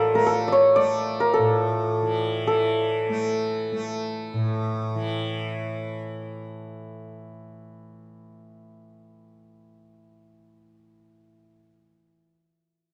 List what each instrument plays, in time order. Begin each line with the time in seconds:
Already playing: tanpura A2 E3 A3, santur F4 A4 D5
0.14 tanpura A3, santur A#4
0.27 santur A4
0.48 santur D5
0.52 santur C#5
0.76 tanpura A3, santur D5
1.20 santur A#4
1.34 santur A4
1.39 tanpura A2
2.02 tanpura E3
2.47 tanpura E3, santur A4
3.09 tanpura A3
3.72 tanpura A3
4.34 tanpura A2
4.95 tanpura E3